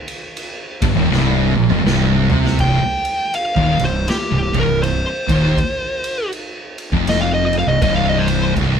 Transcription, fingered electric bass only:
0, 0, Header, 1, 3, 480
1, 0, Start_track
1, 0, Key_signature, -3, "minor"
1, 0, Tempo, 745342
1, 1674, Time_signature, 4, 2, 24, 8
1, 5667, End_track
2, 0, Start_track
2, 0, Title_t, "Fingered electric bass"
2, 0, Program_c, 0, 33
2, 528, Note_on_c, 0, 31, 104
2, 612, Note_off_c, 0, 31, 0
2, 616, Note_on_c, 0, 27, 120
2, 706, Note_off_c, 0, 27, 0
2, 717, Note_on_c, 0, 24, 100
2, 988, Note_off_c, 0, 24, 0
2, 1005, Note_on_c, 0, 34, 91
2, 1094, Note_off_c, 0, 34, 0
2, 1102, Note_on_c, 0, 29, 104
2, 1189, Note_off_c, 0, 29, 0
2, 1192, Note_on_c, 0, 24, 100
2, 1465, Note_off_c, 0, 24, 0
2, 1480, Note_on_c, 0, 36, 87
2, 1657, Note_off_c, 0, 36, 0
2, 1670, Note_on_c, 0, 24, 96
2, 1808, Note_off_c, 0, 24, 0
2, 2295, Note_on_c, 0, 27, 98
2, 2433, Note_off_c, 0, 27, 0
2, 2445, Note_on_c, 0, 24, 82
2, 2620, Note_off_c, 0, 24, 0
2, 2778, Note_on_c, 0, 24, 80
2, 2915, Note_off_c, 0, 24, 0
2, 2922, Note_on_c, 0, 24, 89
2, 3011, Note_off_c, 0, 24, 0
2, 3016, Note_on_c, 0, 24, 80
2, 3241, Note_off_c, 0, 24, 0
2, 3403, Note_on_c, 0, 27, 93
2, 3579, Note_off_c, 0, 27, 0
2, 4457, Note_on_c, 0, 29, 109
2, 4915, Note_off_c, 0, 29, 0
2, 4942, Note_on_c, 0, 24, 83
2, 5030, Note_off_c, 0, 24, 0
2, 5036, Note_on_c, 0, 24, 99
2, 5492, Note_off_c, 0, 24, 0
2, 5515, Note_on_c, 0, 24, 101
2, 5653, Note_off_c, 0, 24, 0
2, 5667, End_track
3, 0, Start_track
3, 0, Title_t, "Muted fingered electric bass strokes"
3, 1821, Note_on_c, 9, 29, 41
3, 1885, Note_off_c, 9, 29, 0
3, 5667, End_track
0, 0, End_of_file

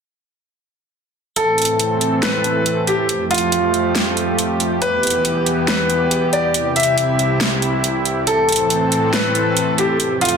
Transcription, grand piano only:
0, 0, Header, 1, 2, 480
1, 0, Start_track
1, 0, Key_signature, 0, "minor"
1, 0, Tempo, 431655
1, 1517, Time_signature, 4, 2, 24, 8
1, 11531, End_track
2, 0, Start_track
2, 0, Title_t, "Grand piano"
2, 0, Program_c, 0, 0
2, 1516, Note_on_c, 0, 69, 91
2, 2385, Note_off_c, 0, 69, 0
2, 2477, Note_on_c, 0, 71, 83
2, 3105, Note_off_c, 0, 71, 0
2, 3196, Note_on_c, 0, 67, 81
2, 3577, Note_off_c, 0, 67, 0
2, 3676, Note_on_c, 0, 65, 90
2, 5265, Note_off_c, 0, 65, 0
2, 5356, Note_on_c, 0, 71, 91
2, 6225, Note_off_c, 0, 71, 0
2, 6316, Note_on_c, 0, 71, 85
2, 6944, Note_off_c, 0, 71, 0
2, 7038, Note_on_c, 0, 74, 84
2, 7418, Note_off_c, 0, 74, 0
2, 7518, Note_on_c, 0, 76, 88
2, 9105, Note_off_c, 0, 76, 0
2, 9197, Note_on_c, 0, 69, 89
2, 10065, Note_off_c, 0, 69, 0
2, 10159, Note_on_c, 0, 71, 85
2, 10786, Note_off_c, 0, 71, 0
2, 10878, Note_on_c, 0, 67, 81
2, 11258, Note_off_c, 0, 67, 0
2, 11358, Note_on_c, 0, 65, 91
2, 11531, Note_off_c, 0, 65, 0
2, 11531, End_track
0, 0, End_of_file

